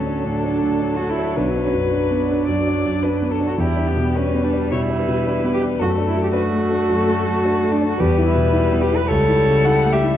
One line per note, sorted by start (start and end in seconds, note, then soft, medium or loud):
0.00 0.22 D2 medium
0.00 0.25 A2 soft
0.00 3.61 F#3 soft
0.00 0.18 A3 soft
0.00 0.27 C#4 medium
0.00 0.07 D4 soft
0.00 1.38 A4 medium
0.07 0.36 D4 soft
0.25 0.55 A2 soft
0.25 0.97 D4 medium
0.44 0.74 D4 soft
0.62 0.92 A2 soft
0.80 1.11 D4 soft
0.96 1.30 A3 soft
0.96 1.11 F#4 medium
1.10 1.36 E4 medium
1.19 1.37 D4 soft
1.37 2.45 B1 medium
1.37 1.45 D4 medium
1.37 2.47 B4 medium
1.56 1.85 D4 soft
1.66 1.74 C#4 medium
1.73 2.03 F#2 soft
1.93 2.22 D4 soft
1.93 3.49 D4 medium
2.11 2.41 B3 soft
2.31 2.60 D4 soft
2.48 2.78 F#2 soft
2.48 3.04 D5 medium
2.67 2.97 D4 soft
2.86 3.15 F#2 soft
3.03 3.34 D4 soft
3.03 3.33 B4 medium
3.22 3.52 B3 soft
3.31 3.61 A4 medium
3.41 3.59 D4 soft
3.47 3.59 F#4 medium
3.58 4.67 E2 medium
3.58 5.81 G3 medium
3.58 3.89 E4 medium
3.58 4.17 G4 medium
3.76 4.07 D4 soft
3.87 4.17 B3 medium
3.96 4.26 B2 soft
4.15 4.45 C#4 medium
4.15 4.45 D4 soft
4.15 4.71 B4 medium
4.34 4.64 B3 soft
4.43 4.72 D4 medium
4.53 4.83 D4 soft
4.71 5.01 B2 soft
4.71 5.53 E4 medium
4.71 4.80 C#5 medium
4.89 5.18 D4 soft
4.99 5.81 B4 medium
5.08 5.37 B2 soft
5.26 5.55 D4 soft
5.44 5.73 B3 soft
5.54 5.62 G4 medium
5.62 5.80 D4 soft
5.79 6.87 F#2 medium
5.79 7.99 A3 medium
5.79 5.90 F#4 medium
5.79 6.32 A4 medium
5.98 6.27 D4 soft
6.08 6.21 E4 medium
6.16 6.45 F#3 soft
6.23 6.33 G4 medium
6.33 6.64 D4 soft
6.33 7.74 F#4 medium
6.33 6.41 B4 medium
6.53 6.83 A3 soft
6.61 7.97 A4 medium
6.71 7.01 D4 soft
6.90 7.97 F#2 medium
7.08 7.37 A3 soft
7.27 7.56 F#3 soft
7.45 7.74 D4 soft
7.64 7.93 A3 medium
7.72 7.86 D4 medium
7.82 8.00 D4 soft
7.88 8.01 F#4 medium
7.99 9.07 E2 medium
7.99 9.06 G3 medium
7.99 8.26 G4 medium
7.99 9.08 B4 medium
8.18 8.47 E4 medium
8.27 8.83 E4 medium
8.35 8.65 B2 soft
8.53 8.83 E4 soft
8.72 9.02 B3 soft
8.81 8.98 G4 medium
8.92 9.10 E4 soft
8.96 9.10 B4 medium
9.08 10.17 C#2 medium
9.08 10.17 G3 medium
9.08 9.92 A4 loud
9.08 9.66 C#5 medium
9.28 9.58 E4 soft
9.47 9.76 C#3 medium
9.65 9.95 E4 medium
9.65 9.94 F#5 medium
9.85 10.14 A3 medium
9.93 10.01 G4 medium
9.93 10.17 E5 medium
10.03 10.17 E4 soft